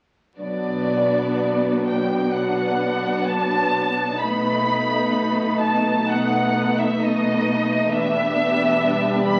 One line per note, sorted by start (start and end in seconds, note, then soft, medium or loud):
0.38 4.17 B1 soft
0.38 4.17 B2 soft
0.38 4.16 F#3 soft
0.38 2.28 B3 soft
0.38 4.16 D4 soft
0.38 2.28 D4 soft
0.38 2.28 F#4 soft
0.38 2.28 B4 soft
0.38 1.81 D5 medium
1.85 2.32 G5 soft
2.31 4.17 B3 soft
2.31 4.17 D4 soft
2.31 4.16 F#4 soft
2.31 4.16 B4 soft
2.31 3.27 F#5 soft
3.26 4.20 A5 medium
4.19 7.87 B1 soft
4.19 7.87 B2 soft
4.19 8.78 A3 soft
4.19 6.05 B3 soft
4.19 6.08 D#4 soft
4.19 7.75 D#4 soft
4.19 6.04 A4 soft
4.19 6.04 B4 soft
4.19 5.60 B5 medium
5.60 6.07 A5 soft
6.08 7.00 B3 soft
6.08 7.00 D#4 soft
6.08 6.99 A4 soft
6.08 6.99 B4 soft
6.08 6.78 F#5 medium
6.78 7.01 E5 medium
7.00 7.90 B3 soft
7.00 7.90 D#4 soft
7.00 7.90 A4 soft
7.00 7.89 B4 soft
7.00 7.92 D#5 medium
7.91 9.40 E1 soft
7.91 9.40 E2 soft
7.91 9.40 B3 soft
7.91 9.40 D4 medium
7.91 9.40 D4 soft
7.91 9.40 G4 soft
7.91 9.40 B4 soft
7.91 9.27 E5 medium
8.82 9.40 G3 medium
9.26 9.40 B5 medium